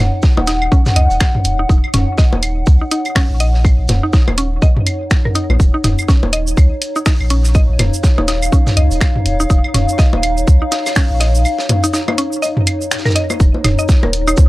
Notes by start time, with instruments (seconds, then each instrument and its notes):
Already playing: ambient pad D#4 C#5 F#5
0.22 kick, snare, shaker
0.37 sub bass D#1, synth arpeggio sound D#4, low bongo
0.47 synth arpeggio sound D#4, snare, closed hi-hat, shaker
0.62 claves
0.72 synth arpeggio sound C#4, kick, shaker
0.86 snare, mid tom, shaker
0.96 sub bass C#2, synth arpeggio sound D#5, closed hi-hat
1.11 sub bass D#1, shaker
1.20 finger snap, kick, snare, closed hi-hat, claves, shaker
1.35 mid tom
1.45 sub bass D#1, closed hi-hat, shaker
1.59 synth arpeggio sound D#4
1.69 sub bass D#1, synth arpeggio sound D#4, kick, shaker
1.84 claves
1.94 sub bass D#1, synth arpeggio sound C#4, snare, closed hi-hat, mid tom, shaker
2.18 synth arpeggio sound D#5, kick, snare, shaker
2.33 sub bass D#1, low bongo
2.43 closed hi-hat, claves, shaker
2.66 sub bass C#2, kick, shaker
2.81 synth arpeggio sound D#4
2.91 synth arpeggio sound D#4, closed hi-hat, shaker
3.05 closed hi-hat, claves
3.15 synth arpeggio sound C#4, finger snap, kick, snare, closed hi-hat, open hi-hat
3.30 sub bass A#1
3.40 synth arpeggio sound D#5, closed hi-hat, shaker
3.54 snare
3.65 kick, claves, shaker
3.79 sub bass A#1
3.88 sub bass D#1, snare, closed hi-hat, mid tom, low bongo, shaker
4.03 synth arpeggio sound D#4
4.13 synth arpeggio sound D#4, kick, snare, shaker
4.28 sub bass D#1, low bongo, claves
4.38 synth arpeggio sound C#4, closed hi-hat, shaker
4.62 synth arpeggio sound D#5, kick, shaker
4.77 mid tom
4.87 closed hi-hat, claves, shaker
5.11 finger snap, kick, snare, closed hi-hat, shaker
5.25 synth arpeggio sound A#4, mid tom
5.35 synth arpeggio sound D#4, closed hi-hat, shaker
5.50 sub bass A#1, low bongo, claves
5.60 sub bass D#1, kick, shaker
5.74 synth arpeggio sound D#4
5.84 sub bass D#1, synth arpeggio sound D#4, snare, closed hi-hat, mid tom, shaker
5.99 claves, shaker
6.08 synth arpeggio sound C#4, kick, snare, shaker
6.23 sub bass D#1, low bongo
6.33 synth arpeggio sound D#5, closed hi-hat, shaker
6.47 shaker
6.57 sub bass C#2, kick, claves, shaker
6.82 closed hi-hat, shaker
6.96 synth arpeggio sound D#4, closed hi-hat, shaker
7.06 synth arpeggio sound D#4, finger snap, kick, snare, closed hi-hat, open hi-hat, shaker
7.20 sub bass A#1, ambient pad F5, claves
7.30 synth arpeggio sound C#4, closed hi-hat, shaker
7.43 snare, shaker
7.54 synth arpeggio sound D#5, kick, shaker
7.69 sub bass A#1
7.79 sub bass D#1, snare, closed hi-hat, mid tom, low bongo, claves, shaker
7.94 shaker
8.03 kick, snare, shaker
8.18 sub bass D#1, synth arpeggio sound D#4, low bongo
8.28 synth arpeggio sound D#4, snare, closed hi-hat, shaker
8.42 claves, shaker
8.52 synth arpeggio sound C#4, kick, shaker
8.67 snare, mid tom, shaker
8.77 sub bass C#2, synth arpeggio sound D#5, closed hi-hat
8.91 sub bass D#1, shaker
9.00 finger snap, kick, snare, closed hi-hat, claves, shaker
9.15 mid tom
9.25 sub bass D#1, closed hi-hat, shaker
9.40 synth arpeggio sound D#4, shaker
9.50 sub bass D#1, synth arpeggio sound D#4, kick, shaker
9.64 claves
9.74 sub bass D#1, synth arpeggio sound C#4, snare, closed hi-hat, mid tom, shaker
9.89 shaker
9.98 synth arpeggio sound D#5, kick, snare, shaker
10.13 sub bass D#1, low bongo
10.23 closed hi-hat, claves, shaker
10.37 shaker
10.47 sub bass C#2, kick, shaker
10.62 synth arpeggio sound D#4
10.72 synth arpeggio sound D#4, snare, closed hi-hat, shaker
10.86 snare, claves, shaker
10.95 synth arpeggio sound C#4, finger snap, kick, snare, closed hi-hat, open hi-hat, shaker
11.11 sub bass A#1
11.20 synth arpeggio sound D#5, snare, closed hi-hat, shaker
11.35 shaker
11.45 claves, shaker
11.58 snare, shaker
11.69 closed hi-hat, mid tom, low bongo
11.84 synth arpeggio sound D#4, closed hi-hat, shaker
11.93 synth arpeggio sound D#4, snare, shaker
12.08 low bongo, claves
12.18 synth arpeggio sound C#4, closed hi-hat, shaker
12.33 shaker
12.42 synth arpeggio sound D#5, shaker
12.57 mid tom
12.67 closed hi-hat, claves, shaker
12.81 shaker
12.91 finger snap, snare, closed hi-hat, shaker
12.98 snare, shaker
13.05 synth arpeggio sound A#4, snare, mid tom, shaker
13.10 snare, shaker
13.16 synth arpeggio sound D#5, closed hi-hat, shaker
13.30 low bongo, claves, shaker
13.40 sub bass D#1, kick, shaker
13.54 low bongo
13.64 sub bass D#1, synth arpeggio sound D#4, snare, closed hi-hat, mid tom, claves, shaker
13.79 synth arpeggio sound D#5, shaker
13.89 kick, snare, shaker
13.94 ambient pad F#5
14.03 sub bass D#1, synth arpeggio sound A#4, low bongo
14.13 closed hi-hat, shaker
14.28 synth arpeggio sound D#4, claves, shaker
14.37 sub bass C#2, kick, low bongo, shaker